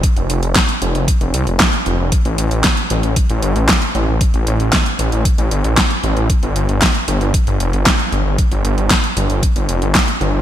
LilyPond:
<<
  \new Staff \with { instrumentName = "Detuned saw bass" } { \clef bass \time 4/4 \key f \lydian \tempo 4 = 115 r16 f,,16 f,,16 f,,16 r8 f,,16 f,,16 r16 f,,16 c,16 f,,16 r8 f,,16 f,,16 | r16 a,,16 a,,16 a,,16 r8 a,,16 a,,16 r16 a,,16 g,,16 a,,16 r8 a,,16 a,,16 | r16 a,,16 a,,16 a,,16 r8 a,,16 a,,16 r16 a,,16 g,,16 a,,16 r8 a,,16 a,,16 | r16 g,,16 g,,16 g,,16 r8 g,,16 g,,16 r16 g,,16 f,,16 g,,16 r8 g,,16 g,,16 |
r16 g,,16 g,,16 g,,16 r8 g,,16 g,,16 r16 g,,16 f,,16 g,,16 r8 g,,16 g,,16 | }
  \new DrumStaff \with { instrumentName = "Drums" } \drummode { \time 4/4 <hh bd>16 hh16 hh16 hh16 <hc hh bd sn>16 hh16 hh16 hh16 <hh bd>16 hh16 hh16 hh16 <hc hh bd sn>16 hh16 hh8 | <hh bd>16 hh16 hh16 hh16 <hc hh bd sn>16 hh16 hh16 hh16 <hh bd>16 hh16 hh16 hh16 <hc hh bd sn>16 hh16 hh8 | <hh bd>16 hh16 hh16 hh16 <hc hh bd sn>16 hh16 hh16 hh16 <hh bd>16 hh16 hh16 hh16 <hc hh bd sn>16 hh16 hh16 hh16 | <hh bd>16 hh16 hh16 hh16 <hc hh bd sn>16 hh16 hh16 hh16 <hh bd>16 hh16 hh16 hh16 <hc hh bd sn>16 hh16 hh8 |
<hh bd>16 hh16 hh16 hh16 <hc hh bd sn>16 hh16 hh16 hh16 <hh bd>16 hh16 hh16 hh16 <hc hh bd sn>16 hh16 hh8 | }
>>